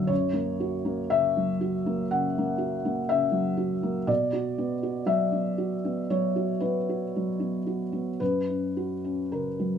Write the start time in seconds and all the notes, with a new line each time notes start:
Already playing: F#2 D3 F#3 F#4 E5 F#5
0.07 F#2 C#5
0.33 A#3
0.60 F#4
0.85 A#3
1.10 C#3 E5
1.37 F#3
1.61 F#4
1.86 A#3
2.11 C#3 F#5
2.38 A#3
2.58 F#4
2.85 A#3
3.09 C#3 E5
3.31 F#3
3.57 F#4
3.83 A#3
4.07 B2 D5
4.33 F#4
4.58 B3
4.83 F#4
5.06 F#3 E5
5.32 B3
5.58 F#4
5.85 B3
6.10 F#3 C#5
6.36 F#4
6.60 B3 B4
6.89 F#4
7.16 F#3
7.40 B3
7.67 F#4
7.92 B3
8.20 F#2 B4
8.49 C#4
8.77 F#4
9.04 C#4
9.32 C#3 A#4
9.59 F#3